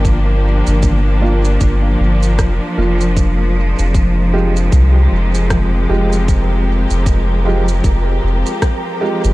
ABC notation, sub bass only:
X:1
M:4/4
L:1/16
Q:"Swing 16ths" 1/4=77
K:Fdor
V:1 name="Sub bass" clef=bass
G,,,3 G,,,4- G,,, G,,,2 G,,,2 F,,, z F,,,2- | F,,,3 F,,,4- F,,, C,,2 F,,,4 F,,,2- | F,,,3 F,,,4- F,,, F,,,2 F,,, z4 G,,, |]